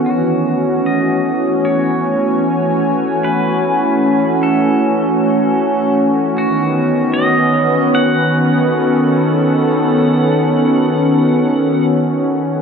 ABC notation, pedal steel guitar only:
X:1
M:4/4
L:1/8
Q:1/4=76
K:F#dor
V:1 name="Pedal steel guitar"
F2 d2 c4 | B3 A4 z | F2 d2 f4- | f6 z2 |]